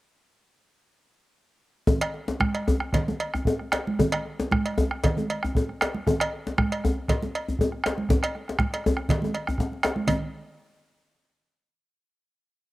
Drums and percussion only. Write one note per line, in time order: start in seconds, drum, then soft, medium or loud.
1.87 bombo rim soft
1.87 bombo low medium
1.87 djembe tone medium
1.87 low conga medium
1.87 djembe bass medium
2.01 bombo rim medium
2.01 cowbell medium
2.14 djembe slap soft
2.28 djembe slap medium
2.28 djembe tone medium
2.40 bombo rim medium
2.40 bombo low medium
2.40 djembe slap soft
2.40 high conga medium
2.55 bombo rim soft
2.55 cowbell soft
2.67 bombo rim soft
2.67 djembe tone medium
2.67 djembe bass medium
2.80 bombo rim medium
2.93 bombo rim soft
2.93 bombo low medium
2.93 cowbell soft
2.93 djembe slap medium
2.93 low conga medium
3.08 high conga medium
3.08 djembe tone medium
3.20 cowbell soft
3.34 bombo rim medium
3.34 djembe bass soft
3.45 bombo low medium
3.45 djembe tone medium
3.59 bombo rim soft
3.59 high conga soft
3.72 bombo rim medium
3.72 cowbell soft
3.72 djembe slap medium
3.87 high conga medium
3.99 bombo rim soft
3.99 bombo low medium
3.99 djembe tone medium
3.99 djembe bass medium
3.99 low conga medium
4.12 bombo rim medium
4.12 cowbell medium
4.26 djembe slap soft
4.40 djembe slap soft
4.40 djembe tone soft
4.52 bombo rim medium
4.52 bombo low medium
4.52 djembe slap soft
4.52 high conga medium
4.66 bombo rim soft
4.66 cowbell soft
4.78 bombo rim soft
4.78 djembe tone medium
4.78 djembe bass medium
4.91 bombo rim medium
5.04 bombo rim soft
5.04 bombo low medium
5.04 cowbell soft
5.04 djembe slap medium
5.04 low conga medium
5.17 high conga medium
5.17 djembe tone soft
5.30 cowbell soft
5.43 bombo rim medium
5.43 djembe bass medium
5.55 bombo low medium
5.55 djembe tone medium
5.69 bombo rim soft
5.69 high conga soft
5.81 bombo rim medium
5.81 cowbell soft
5.81 djembe slap medium
5.94 high conga soft
6.07 bombo rim soft
6.07 bombo low loud
6.07 djembe tone medium
6.07 low conga medium
6.07 djembe bass medium
6.20 bombo rim medium
6.20 cowbell medium
6.33 djembe slap soft
6.47 djembe slap soft
6.47 djembe tone soft
6.58 bombo rim medium
6.58 bombo low medium
6.58 djembe slap soft
6.58 high conga medium
6.72 bombo rim soft
6.72 cowbell soft
6.84 bombo rim soft
6.84 djembe tone medium
6.84 djembe bass medium
7.08 bombo rim soft
7.08 bombo low medium
7.08 cowbell medium
7.08 djembe slap medium
7.08 low conga medium
7.23 high conga medium
7.23 djembe tone medium
7.35 cowbell soft
7.49 djembe bass medium
7.59 bombo low medium
7.59 djembe tone medium
7.72 bombo rim soft
7.72 high conga soft
7.84 bombo rim medium
7.84 cowbell soft
7.84 djembe slap medium
7.98 high conga medium
8.09 bombo rim soft
8.09 bombo low medium
8.09 djembe slap soft
8.09 high conga soft
8.09 djembe tone medium
8.09 low conga medium
8.09 djembe bass medium
8.23 bombo rim medium
8.23 cowbell medium
8.35 bombo rim soft
8.35 djembe slap soft
8.35 high conga soft
8.48 bombo rim soft
8.48 djembe slap medium
8.59 bombo rim medium
8.59 bombo low medium
8.59 high conga medium
8.73 cowbell soft
8.73 djembe slap soft
8.73 high conga soft
8.84 bombo rim soft
8.84 djembe tone medium
8.84 djembe bass medium
8.97 bombo rim medium
9.09 bombo low medium
9.09 cowbell soft
9.09 djembe slap medium
9.09 low conga medium
9.22 high conga medium
9.22 djembe tone medium
9.34 bombo rim soft
9.34 cowbell soft
9.34 high conga soft
9.47 bombo rim medium
9.47 djembe bass medium
9.58 bombo rim soft
9.58 bombo low medium
9.58 djembe slap soft
9.58 djembe tone medium
9.72 djembe slap soft
9.72 high conga soft
9.83 bombo rim medium
9.83 cowbell soft
9.83 djembe slap medium
9.96 djembe slap soft
9.96 high conga medium
10.07 bombo low medium
10.07 cowbell medium
10.07 low conga medium
10.07 djembe bass medium